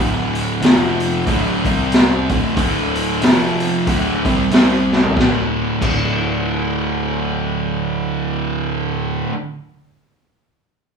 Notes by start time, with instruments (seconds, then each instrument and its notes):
Already playing: picked electric bass D1, distorted electric guitar D2 A2
0.00 distorted electric guitar D3
0.35 open hi-hat
0.62 picked electric bass F1, distorted electric guitar F2 C3 F3, snare, open hi-hat
1.00 open hi-hat
1.26 picked electric bass D1, distorted electric guitar D2 A2 D3, kick, open hi-hat
1.65 picked electric bass C2, distorted electric guitar C3 G3 C4, kick, open hi-hat
1.92 snare, open hi-hat
2.29 picked electric bass D1, distorted electric guitar D2 A2 D3, kick, open hi-hat
2.56 picked electric bass D1, distorted electric guitar D2 A2 D3, kick, open hi-hat
2.95 open hi-hat
3.22 picked electric bass F1, distorted electric guitar F2 C3 F3, snare, open hi-hat
3.60 open hi-hat
3.87 picked electric bass D1, distorted electric guitar D2 A2 D3, kick, open hi-hat
4.24 picked electric bass C2, distorted electric guitar C3 G3 C4, kick, open hi-hat
4.51 picked electric bass C2, distorted electric guitar C3 G3 C4, snare, open hi-hat
4.92 snare
5.03 floor tom
5.16 picked electric bass D1, distorted electric guitar D2 A2, kick, snare
5.20 distorted electric guitar D3
5.80 picked electric bass D1, distorted electric guitar D2 A2, kick, crash
5.84 distorted electric guitar D3